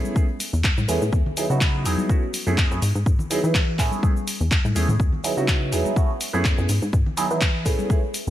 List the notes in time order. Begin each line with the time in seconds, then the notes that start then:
Already playing: A3 B3 C#4 E4 G#4
0.04 high conga, shaker
0.15 A3 B3 C#4 E4 G#4, kick, high conga, shaker
0.28 shaker
0.40 open hi-hat, shaker
0.53 E2, shaker
0.64 kick, clap, shaker
0.78 A2, high conga, shaker
0.88 E2 A3 B3 C#4 E4 G#4, open hi-hat, shaker
1.02 A2, shaker
1.13 E2, kick, shaker
1.26 low conga, shaker
1.37 F#3 B3 D#4 E4 G#4, open hi-hat, shaker
1.50 C#3 F#3 B3 D#4 E4 F#4, shaker
1.61 kick, clap, shaker
1.75 shaker
1.85 E2 F#3 B3 D#4 E4 G#4, open hi-hat, shaker
1.98 high conga, shaker
2.09 A3 B3 C#4 E4 F#4, kick, shaker
2.22 shaker
2.33 open hi-hat, shaker
2.46 F#2 A3 B3 C#4 E4 G#4, shaker
2.58 kick, clap, shaker
2.71 F#2 A3 B3 C#4 E4 G#4, shaker
2.82 G#2, open hi-hat, shaker
2.95 G#2, shaker
3.06 G#2, kick, shaker
3.19 low conga, shaker
3.30 F#3 B3 D#4 E4 G#4, open hi-hat, shaker
3.43 E3 F#3 B3 D#4 E4 B4, shaker
3.55 kick, clap, shaker
3.79 A2 A3 B3 C#4 E4 G#4, kick, clap, open hi-hat, shaker
3.92 high conga, shaker
4.03 A3 B3 C#4 E4 G#4, kick, high conga, shaker
4.16 shaker
4.27 open hi-hat, shaker
4.40 E2, shaker
4.51 kick, clap, shaker
4.64 A2, high conga, shaker
4.75 E2 A3 B3 C#4 E4 G#4, open hi-hat, shaker
4.88 A2, low conga, shaker
5.00 E2, kick, shaker
5.13 low conga, shaker
5.23 F#3 B3 D#4 E4 G#4, open hi-hat, shaker
5.37 C#3 F#3 B3 D#4 E4 F#4, shaker
5.48 kick, clap, shaker
5.62 shaker
5.72 E2 F#3 B3 D#4 E4 G#4, open hi-hat, shaker
5.85 high conga, shaker
5.96 A3 B3 C#4 E4 F#4, kick, shaker
6.10 shaker
6.21 open hi-hat, shaker
6.33 F#2 A3 B3 C#4 E4 G#4, shaker
6.45 kick, clap, shaker
6.58 F#2 A3 B3 C#4 E4 G#4, shaker
6.68 G#2, open hi-hat, shaker
6.82 G#2, shaker
6.93 G#2, kick, shaker
7.06 low conga, shaker
7.17 F#3 B3 D#4 E4 G#4, open hi-hat, shaker
7.30 E3 F#3 B3 D#4 E4 B4, shaker
7.41 kick, clap, shaker
7.55 shaker
7.65 A2 A3 B3 C#4 E4 G#4, kick, open hi-hat, shaker
7.79 high conga, shaker
7.89 A3 B3 C#4 E4 G#4, kick, high conga, shaker
8.03 shaker
8.14 open hi-hat, shaker